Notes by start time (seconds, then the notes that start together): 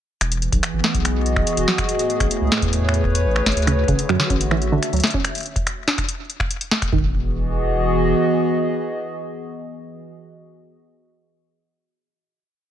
0.21 E1 E3, finger snap, closed hi-hat
0.32 closed hi-hat
0.42 B3, closed hi-hat
0.52 B1 G#4, kick, closed hi-hat
0.63 finger snap, closed hi-hat
0.74 G#1
0.84 F#4 D#5, snare
0.94 B1, kick, closed hi-hat
1.05 finger snap, closed hi-hat
1.26 closed hi-hat
1.36 finger snap, kick
1.47 closed hi-hat
1.57 E1, closed hi-hat
1.68 A2, snare
1.78 finger snap, kick, closed hi-hat
1.85 A3
1.89 closed hi-hat
1.99 closed hi-hat
2.10 closed hi-hat
2.20 A1, finger snap, kick, closed hi-hat
2.31 closed hi-hat
2.41 C#2 B4
2.52 C#5, snare
2.57 finger snap
2.62 E2, kick, closed hi-hat
2.73 closed hi-hat
2.89 finger snap
2.94 closed hi-hat
3.04 kick
3.15 closed hi-hat
3.25 A1
3.36 finger snap
3.46 A1, kick, snare, closed hi-hat
3.52 closed hi-hat
3.57 D2 D3, closed hi-hat
3.62 closed hi-hat
3.67 C#3 F#4, finger snap, closed hi-hat
3.88 A1 C#3, kick, closed hi-hat
3.99 closed hi-hat
4.09 F#2 F#3, finger snap
4.20 snare
4.30 A1 C#4 E5, kick, closed hi-hat
4.41 closed hi-hat
4.51 E3, finger snap
4.62 closed hi-hat
4.72 D3
4.83 finger snap, closed hi-hat
4.93 D2 F#3, closed hi-hat
4.96 closed hi-hat
5.00 snare, closed hi-hat
5.04 closed hi-hat
5.07 closed hi-hat
5.10 C#4, kick, closed hi-hat
5.25 finger snap, closed hi-hat
5.35 closed hi-hat
5.38 closed hi-hat
5.40 closed hi-hat
5.43 closed hi-hat
5.46 closed hi-hat
5.56 kick, closed hi-hat
5.67 finger snap, closed hi-hat
5.88 snare
5.98 finger snap, kick, closed hi-hat
6.09 closed hi-hat
6.30 closed hi-hat
6.40 finger snap, kick
6.51 closed hi-hat
6.61 closed hi-hat
6.71 snare
6.82 finger snap, kick, closed hi-hat
6.92 E1 D#3 E3, kick, floor tom
6.99 B3
7.05 F#4
7.11 G#4
7.18 D#5